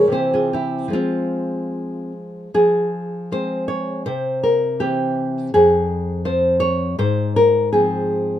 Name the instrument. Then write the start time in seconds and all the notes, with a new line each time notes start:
nylon-string guitar
Already playing: G#3 A#4 C#5
0.08 C3 E3
0.12 C4 G4 C5
0.33 F4 G#4
0.53 E4 G4
0.88 F3 G#3
0.93 C4 F4
2.54 F3 G#4
3.32 G#3 C4 C5
3.68 C#5
4.06 C3 C5
4.43 A#4
4.80 E3 C4 G4
5.54 F2 G#4
6.25 F3 C4 C5
6.60 C#5
6.98 G#2 C5
7.36 A#4
7.73 F3 C4 G#4